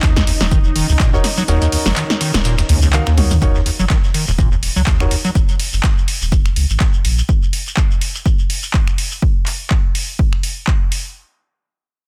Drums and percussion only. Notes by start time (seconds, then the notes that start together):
0.03 kick, snare, clap, tambourine, shekere
0.16 kick, snare, shekere
0.27 open hi-hat, tambourine
0.41 snare, shekere
0.51 kick, tambourine, shekere
0.64 shekere
0.76 open hi-hat, tambourine
0.89 shekere
0.99 kick, snare, clap, tambourine, shekere
1.14 shekere
1.24 snare, open hi-hat, tambourine
1.37 closed hi-hat, shekere
1.48 tambourine, shekere
1.62 closed hi-hat, shekere
1.72 open hi-hat
1.86 snare, shekere
1.96 finger snap, snare, clap, tambourine, shekere
2.10 snare, shekere
2.21 snare, open hi-hat, tambourine
2.34 snare, tambourine, shekere
2.44 snare, tambourine, shekere
2.57 finger snap, snare, tambourine, shekere
2.69 open hi-hat, tambourine
2.82 shekere
2.93 clap, tambourine, shekere
3.06 finger snap, snare, shekere
3.18 snare, open hi-hat, high tom, tambourine
3.31 mid tom, tambourine, shekere
3.42 kick, tambourine, shekere
3.55 snare, shekere
3.66 open hi-hat, tambourine
3.79 shekere
3.90 kick, snare, clap, tambourine, shekere
4.04 snare, shekere
4.14 open hi-hat, tambourine
4.27 shekere
4.38 kick, tambourine, shekere
4.52 shekere
4.63 open hi-hat, tambourine
4.76 shekere
4.87 kick, snare, clap, tambourine, shekere
5.00 finger snap, shekere
5.11 open hi-hat, tambourine
5.25 closed hi-hat, shekere
5.35 kick, tambourine, shekere
5.49 closed hi-hat, shekere
5.59 open hi-hat
5.73 shekere
5.83 finger snap, kick, snare, clap, tambourine, shekere
5.98 shekere
6.08 open hi-hat, tambourine
6.22 shekere
6.32 kick, tambourine, shekere
6.45 finger snap, shekere
6.56 open hi-hat, tambourine
6.70 shekere
6.80 kick, snare, clap, tambourine, shekere
6.93 shekere
7.05 open hi-hat, tambourine
7.18 shekere
7.29 kick, shekere
7.42 shekere
7.53 open hi-hat
7.67 shekere
7.77 kick, clap, shekere
7.91 shekere
8.01 open hi-hat
8.15 shekere
8.25 kick, shekere
8.39 shekere
8.50 open hi-hat
8.63 shekere
8.74 kick, clap, shekere
8.88 finger snap, shekere
8.98 open hi-hat
9.11 shekere
9.22 kick
9.46 clap, open hi-hat
9.71 finger snap, kick, clap
9.95 open hi-hat
10.19 kick
10.33 finger snap
10.43 open hi-hat
10.67 kick, clap
10.92 open hi-hat